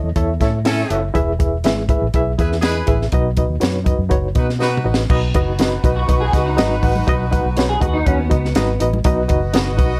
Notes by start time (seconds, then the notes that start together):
0.04 E2
0.16 E2 E4 A4 C#5 E5, kick, closed hi-hat
0.40 A2 C#4 E4 A4 C#5 E5, kick, snare, closed hi-hat
0.65 C#4 E4 A4 C#5 E5, snare, closed hi-hat
0.90 F#1 E4 A4 C#5 E5, closed hi-hat
1.14 E1 E3 E4 G#4 B4 E5, kick, closed hi-hat
1.39 E4 G#4 B4 E5, kick, closed hi-hat
1.64 G#1 E4 G#4 B4 E5, snare, closed hi-hat
1.89 E4 G#4 B4 E5, kick, closed hi-hat
2.02 A1
2.14 B1 E4 G#4 B4 E5, kick, closed hi-hat
2.38 E2 E4 G#4 B4 E5, kick, closed hi-hat
2.52 snare
2.61 E4 G#4 B4 D#5, snare, closed hi-hat
2.86 A1 E4 G#4 B4 E5, kick, closed hi-hat
3.02 snare
3.12 B1 B2 D#4 F#4 B4 D#5, kick, closed hi-hat
3.37 D#4 F#4 B4 D#5, kick, closed hi-hat
3.49 D#2
3.60 F#2 D#4 F#4 B4 C#5, snare, closed hi-hat
3.84 D#4 F#4 B4 D#5, kick, closed hi-hat
3.99 F#2
4.09 F#1 D#4 F#4 B4 C#5, kick, closed hi-hat
4.35 B2 D#4 F#4 B4 D#5, kick, closed hi-hat
4.50 snare
4.59 D#4 F#4 B4 D#5, snare
4.77 mid tom
4.84 A1 D#4 F#4 B4 D#5
4.94 snare
5.10 B1 B2 D#4 F#4 B4 D#5, kick, crash, muted conga
5.34 F#1 D#4 F#4 B4 D#5, kick, closed hi-hat
5.59 D#4 F#4 B4 D#5, snare, closed hi-hat, high conga
5.84 B1 D#4 F#4 B4 D#5, kick, closed hi-hat, muted conga
5.96 F#4
6.08 B1 D#4 F#4 B4 D#5, kick, closed hi-hat, muted conga
6.21 G#4
6.32 C#2 D#4 F#4 B4 D#5, kick, snare, closed hi-hat
6.46 D#4
6.57 G#1 D#4 F#4 B4 D#5, snare, closed hi-hat, high conga
6.82 A1 D#4 F#4 B4 F#5, kick, open hi-hat
6.96 high conga
7.07 B1 B2 D#4 F#4 B4 D#5, kick, closed hi-hat
7.31 D#4 F#4 B4 F#5, kick, closed hi-hat
7.45 B1
7.56 D#4 F#4 B4 C#5, snare, closed hi-hat, high conga
7.69 G#4
7.81 D#2 D#4 F#4 B4 D#5, kick, closed hi-hat, muted conga, low conga
7.93 D#4
8.06 D#2 C#4 D#4 F#4 B4 F#5, kick, closed hi-hat, muted conga
8.18 B3
8.30 C#2 D#4 F#4 B4 D#5, kick, closed hi-hat
8.45 snare
8.55 G#1 D#4 F#4 B4 D#5, snare, closed hi-hat, high conga
8.80 A1 D#4 F#4 B4 D#5, closed hi-hat
8.93 high conga
9.04 B1 B2 D#4 F#4 B4 D#5, kick, closed hi-hat, muted conga
9.28 F#1 D#4 F#4 B4 D#5, kick, closed hi-hat
9.54 D#4 F#4 B4 D#5, snare, closed hi-hat, high conga
9.77 B1 D#4 F#4 B4 D#5, kick, closed hi-hat, muted conga